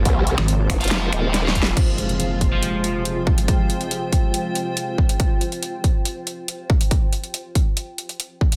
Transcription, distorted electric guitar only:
\new Staff \with { instrumentName = "Distorted electric guitar" } { \time 4/4 \key f \minor \tempo 4 = 140 r4. r16 <f' c'' f''>4. <f' c'' f''>16 r8 | r4. r16 <f' c'' f''>4.~ <f' c'' f''>16 <f' c'' f''>16 r16 | r1 | r1 |
r1 | }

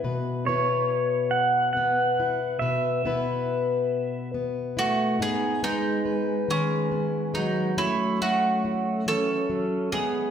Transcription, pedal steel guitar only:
\new Staff \with { instrumentName = "Pedal steel guitar" } { \time 6/8 \key gis \phrygian \tempo 4. = 47 r8 cis''4 fis''8 fis''4 | e''2 r8 a8 | b8 gis4 gis4 fis8 | a8 a4 cis'4 b8 | }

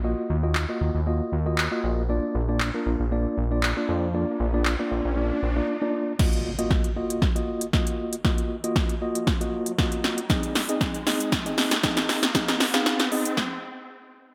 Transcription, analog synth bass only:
\new Staff \with { instrumentName = "Analog synth bass" } { \clef bass \time 4/4 \key ees \dorian \tempo 4 = 117 bes,,8 ees,4 ees,16 ees,8. ees,4 bes,,8~ | bes,,8 bes,,4 bes,,16 bes,,8. bes,,4 f,8~ | f,8 bes,,4 bes,,16 bes,,8. bes,,8 r4 | r1 |
r1 | r1 | r1 | }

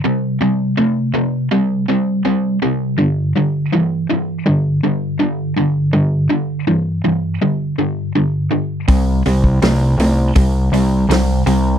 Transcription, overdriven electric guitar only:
\new Staff \with { instrumentName = "Overdriven electric guitar" } { \clef bass \time 4/4 \key c \dorian \tempo 4 = 82 <c g>8 <c g>8 <c a>8 <c a>8 <c g>8 <c g>8 <c g>8 <c g>8 | <g, d>8 <g, d>8 <g, e>8 <g, e>8 <g, d>8 <g, d>8 <g, d>8 <g, d>8 | <g, d>8 <g, d>8 <g, e>8 <g, e>8 <g, d>8 <g, d>8 <g, d>8 <g, d>8 | <c g>8 <c g>8 <c a>8 <c a>8 <c g>8 <c g>8 <c g>8 <c g>8 | }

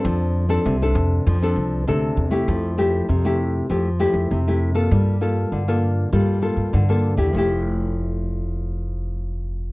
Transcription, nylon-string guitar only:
\new Staff \with { instrumentName = "Nylon-string guitar" } { \time 4/4 \key f \major \tempo 4 = 99 << { <c' d' a'>8. <c' d' a'>8 <c' d' a'>4 <c' d' a'>8. <c' d' a'>8. <a e' g'>16~ | <a e' g'>8 <a e' g'>8 r16 <a e' g'>8. <a e' g'>16 r16 <a e' g'>8. <a e' g'>8 <bes f' a'>16~ | <bes f' a'>8 <bes f' a'>8. <bes f' a'>8. <bes f' a'>8 <bes f' a'>8. <bes f' a'>8 <a e' g'>16~ | <a e' g'>8 r2. r8 | } \\ { f4 c4 f4 c4 | f4 c4 f4 c4 | g4 d4 g4 d4 | <f a e' g'>1 | } >> }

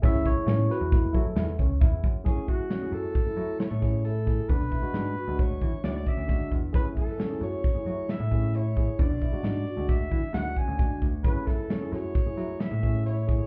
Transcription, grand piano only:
\new Staff \with { instrumentName = "Grand piano" } { \time 5/4 \key fis \minor \tempo 4 = 134 cis'8 e'8 cis'8 fis'4 e'8 e'8 cis'8 e'4 | cis'8 e'8 cis'8 fis'4 e'8 e'8 cis'8 e'4 | d'8 e'8 d'8 fis'4 e'8 e'8 cis'8 d'4 | cis'8 e'8 cis'8 fis'4 e'8 e'8 cis'8 e'4 |
d'8 e'8 d'8 fis'4 e'8 e'8 cis'8 d'4 | cis'8 e'8 cis'8 fis'4 e'8 e'8 cis'8 e'4 | }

